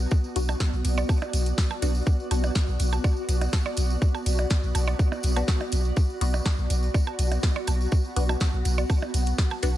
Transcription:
Already playing: ambient pad B3 F#4 D5, synth texture F#4
0.11 kick, tambourine
0.24 tambourine
0.36 sub bass B1, synth stab B3 D4 F#4, closed hi-hat, tambourine
0.49 tambourine, percussion blips
0.60 kick, snare, tambourine
0.73 sub bass B1, tambourine
0.85 sub bass B1, closed hi-hat, tambourine
0.98 tambourine, percussion blips
1.09 kick, tambourine, percussion blips
1.22 tambourine, percussion blips
1.33 sub bass B1, closed hi-hat, tambourine
1.46 closed hi-hat, tambourine
1.58 kick, snare, tambourine
1.71 tambourine, percussion blips
1.82 sub bass B1, synth stab B3 D4 F#4, closed hi-hat, tambourine
1.95 tambourine
2.07 kick, tambourine
2.20 tambourine
2.31 sub bass B1, synth stab B3 D4 F#4, closed hi-hat, tambourine, percussion blips
2.44 tambourine, percussion blips
2.55 kick, snare, tambourine
2.68 sub bass B1, tambourine
2.79 sub bass B1, closed hi-hat, tambourine
2.93 tambourine, percussion blips
3.04 kick, tambourine, percussion blips
3.17 tambourine
3.29 sub bass B1, closed hi-hat, tambourine
3.41 closed hi-hat, tambourine, percussion blips
3.53 kick, snare, tambourine, percussion blips
3.66 tambourine, percussion blips
3.77 sub bass B1, closed hi-hat, tambourine
3.90 tambourine
4.02 kick, tambourine
4.15 tambourine, percussion blips
4.26 sub bass B1, closed hi-hat, tambourine
4.39 tambourine, percussion blips
4.50 kick, snare, tambourine
4.63 sub bass B1, tambourine
4.75 sub bass B1, closed hi-hat, tambourine, percussion blips
4.88 tambourine, percussion blips
4.99 kick, tambourine
5.12 tambourine, percussion blips
5.23 sub bass B1, closed hi-hat, tambourine
5.36 synth stab B3 D4 F#4, closed hi-hat, tambourine, percussion blips
5.48 kick, snare, tambourine
5.60 tambourine, percussion blips
5.72 sub bass B1, closed hi-hat, tambourine
5.85 tambourine
5.96 kick, tambourine
6.10 tambourine
6.21 sub bass B1, synth stab B3 D4 F#4, closed hi-hat, tambourine
6.34 tambourine, percussion blips
6.45 kick, snare, tambourine, percussion blips
6.58 sub bass B1, tambourine
6.70 sub bass B1, closed hi-hat, tambourine
6.83 tambourine
6.94 kick, tambourine, percussion blips
7.00 ambient pad F#5
7.07 tambourine, percussion blips
7.19 sub bass B1, closed hi-hat, tambourine
7.32 closed hi-hat, tambourine, percussion blips
7.43 kick, snare, tambourine
7.56 tambourine, percussion blips
7.67 sub bass B1, closed hi-hat, tambourine, percussion blips
7.81 tambourine
7.92 kick, tambourine
8.04 tambourine
8.16 sub bass B1, synth stab B3 D4 F#4, closed hi-hat, tambourine
8.29 tambourine, percussion blips
8.40 kick, snare, tambourine
8.54 sub bass B1, tambourine
8.65 sub bass B1, closed hi-hat, tambourine
8.78 tambourine, percussion blips
8.90 kick, tambourine, percussion blips
9.02 tambourine, percussion blips
9.14 sub bass B1, closed hi-hat, tambourine
9.26 closed hi-hat, tambourine
9.38 kick, snare, tambourine
9.50 tambourine, percussion blips
9.63 sub bass B1, synth stab B3 D4 F#4, closed hi-hat, tambourine

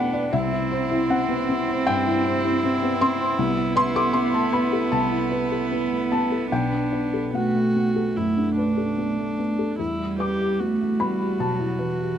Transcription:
Already playing: felt piano B2 A3 B3 E4 B4 D5 F#5 G5 A5, cello B3, viola D4
0.13 felt piano D5
0.33 felt piano C2 E5, cello C4, viola E4
0.52 felt piano E4
0.72 felt piano C5
0.91 felt piano E4
1.10 felt piano C4 F#5
1.29 felt piano B3
1.49 felt piano C4
1.68 felt piano C5
1.87 felt piano G2 G5
2.07 felt piano E4
2.26 felt piano C5
2.45 felt piano E4
2.64 felt piano C4
2.83 felt piano B3
3.01 felt piano C4 C6
3.20 felt piano C5
3.38 felt piano C2, cello B3
3.57 felt piano E4
3.76 felt piano B4 C6
3.96 felt piano A4 D6
4.13 felt piano B3 C6
4.34 felt piano A3 A5
4.53 felt piano B3 B5
4.73 felt piano A4
4.92 felt piano C2 A5
5.12 felt piano E4
5.32 felt piano B4
5.52 felt piano A4
5.72 felt piano B3
5.91 felt piano A3
6.12 felt piano B3 A5
6.32 felt piano A4
6.51 felt piano B1 G5, viola D4
6.72 felt piano D4
6.93 felt piano B4
7.14 felt piano A4
7.34 cello A3, felt piano B3 F#5, viola F#4
7.54 felt piano A3
7.75 felt piano B3
7.96 felt piano A4
8.17 felt piano F#2, viola E4
8.37 felt piano D4
8.58 viola D4, felt piano B4
8.77 felt piano A4
8.98 felt piano B3
9.19 felt piano A3
9.38 felt piano B3
9.59 felt piano A4
9.79 felt piano E2, cello G3, viola E4
9.99 felt piano E4
10.19 viola G4, felt piano B4 D6
10.40 felt piano G4
10.60 cello A3, felt piano B3, viola F#4
10.81 felt piano A3
11.00 cello G3, felt piano B3 B5
11.20 felt piano G4
11.39 felt piano B2 A5, cello F#3
11.59 felt piano E4
11.79 cello E3, felt piano B4
11.99 felt piano G4

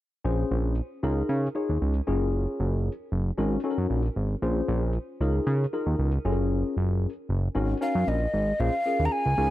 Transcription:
0.24 analog synth bass A#1, tine electric piano C#4 F4 G#4 C5
0.51 analog synth bass A#1
1.03 analog synth bass C#2, tine electric piano D#4 F4 G#4 A#4
1.29 analog synth bass C#3
1.55 tine electric piano D#4 F4 G#4 C#5
1.69 analog synth bass D#2
1.82 analog synth bass C#2
2.07 analog synth bass F#1, tine electric piano C#4 F4 G#4 A#4
2.60 analog synth bass F#1
3.12 analog synth bass F#1
3.38 analog synth bass G#1, tine electric piano C#4 D#4 F#4 A#4
3.64 tine electric piano C#4 D#4 F#4 A4
3.71 tine electric piano A#4
3.78 analog synth bass F#2
3.90 analog synth bass A#1
4.16 analog synth bass G#1
4.42 analog synth bass A#1, tine electric piano C#4 F4 G#4 C5
4.68 analog synth bass A#1
5.20 analog synth bass C#2, tine electric piano D#4 F4 G#4 A#4
5.47 analog synth bass C#3
5.73 tine electric piano D#4 F4 G#4 A#4
5.86 analog synth bass D#2
5.99 analog synth bass C#2
6.25 analog synth bass F#1, tine electric piano C#4 F4 G#4 A4
6.32 tine electric piano A#4
6.77 analog synth bass F#1
7.29 analog synth bass F#1
7.55 analog synth bass G#1, tine electric piano C#4 D#4 F#4 A#4
7.81 tine electric piano C#4 D#4 F#4 A#4, recorder F5
7.95 analog synth bass F#2
8.07 analog synth bass A#1, recorder D#5
8.33 analog synth bass G#1
8.59 analog synth bass A#1, tine electric piano C#4 F4 G#4 C5, recorder F5
8.86 tine electric piano C#4 F4 G#4 A#4
8.99 analog synth bass D#2
9.05 recorder A#5
9.12 recorder G#5
9.26 analog synth bass C#2
9.38 analog synth bass C#2, tine electric piano D#4 F4 G#4 A#4

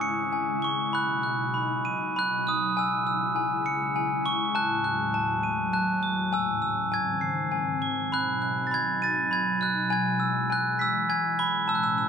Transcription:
Already playing: ambient pad C#3 G#3 E4, glockenspiel G#5 C#6
0.01 glockenspiel C#7
0.33 glockenspiel G#5
0.62 glockenspiel C#6 G#7
0.93 ambient pad B2 F#3 D#4, glockenspiel B5 F#6
1.23 glockenspiel F#6
1.54 glockenspiel B5
1.85 glockenspiel D#7
2.16 glockenspiel B5 F#6
2.47 glockenspiel D#6 B7
2.77 ambient pad C#3 G#3 E4, glockenspiel G#5 E6
3.07 glockenspiel E6
3.36 glockenspiel G#5
3.66 glockenspiel C#7
3.96 glockenspiel G#5
4.26 glockenspiel C#6 G#7
4.55 ambient pad D#2 A2 F#3, glockenspiel A5 F#6
4.84 glockenspiel F#6
5.14 glockenspiel A5
5.43 glockenspiel D#7
5.73 glockenspiel A5 F#6
6.03 glockenspiel A7
6.33 ambient pad G#2 C#3 E3, glockenspiel G#5 E6
6.62 glockenspiel E6
6.92 ambient pad D#3 C4, glockenspiel G#5 G#6
7.21 glockenspiel C7
7.52 glockenspiel G#5
7.82 glockenspiel G#7
8.12 ambient pad B2 F#3 D#4, glockenspiel B5 F#6
8.42 glockenspiel F#6
8.67 glockenspiel A6
8.71 glockenspiel B5 G#6
9.02 glockenspiel A6 D#7
9.31 glockenspiel B5 G#6
9.61 glockenspiel F#6 B7
9.90 ambient pad E3 G#3, glockenspiel G#5 G#6
10.20 glockenspiel E6
10.50 glockenspiel G#5 F#6
10.79 glockenspiel E6 B6
11.09 glockenspiel G#5 G#6
11.39 glockenspiel B5 G#7
11.68 ambient pad A2 C#4, glockenspiel A5 E6
11.75 glockenspiel F#6
11.83 glockenspiel E6
11.98 glockenspiel E6

